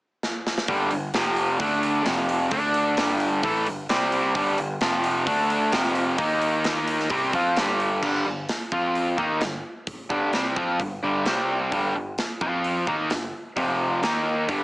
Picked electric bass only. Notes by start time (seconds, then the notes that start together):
0.68 G1
0.92 G1
1.14 F1
1.60 D2
2.06 F1
2.52 D2
2.98 G1
3.44 A1
3.67 G1
3.90 C2
4.35 G1
4.59 G1
4.82 F1
5.27 D2
5.73 F1
6.19 D#2
7.10 C2
7.33 F2
7.57 G1
8.03 G1
8.26 G1
8.72 F2
9.18 D#2
9.41 G1
10.10 G1
10.33 C2
10.56 F2
10.80 G1
11.03 G1
11.26 C2
11.72 G1
11.95 G1
12.41 F2
12.87 D#2
13.11 G1
13.57 F1
14.03 D#2
14.49 G1